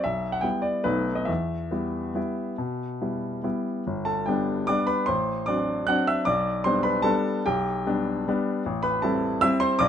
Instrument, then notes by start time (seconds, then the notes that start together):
grand piano
0.04 B1 E5
0.32 F#5
0.41 G3 B3 E4 G5
0.62 D5
0.84 B1 A3 B3 D#4 B4
1.15 D#5
1.25 E2 E5
1.71 G3 B3 E4
2.14 G3 B3 E4
2.58 B2
3.01 G3 B3 E4
3.43 G3 B3 E4
3.87 G1
4.05 A4 A5
4.26 G3 B3 D4 G4 G5
4.67 G3 B3 D4 D5 D6
4.87 B4 B5
5.06 A1 C5 C6
5.46 F#3 C4 D4 D5 D6
5.87 F#3 C4 D4 F#5 F#6
6.07 E5 E6
6.25 B1 D5 D6
6.64 G3 B3 D4 C5 C6
6.83 B4 B5
7.02 G3 B3 D4 A4 A5
7.46 B1 G4 G5
7.86 G3 B3 D4
8.28 G3 B3 D4
8.66 A1
8.83 B4 B5
9.02 G3 C4 E4 A4 A5
9.41 G3 C4 E4 E5 E6
9.60 C5 C6
9.79 B1 D5 D6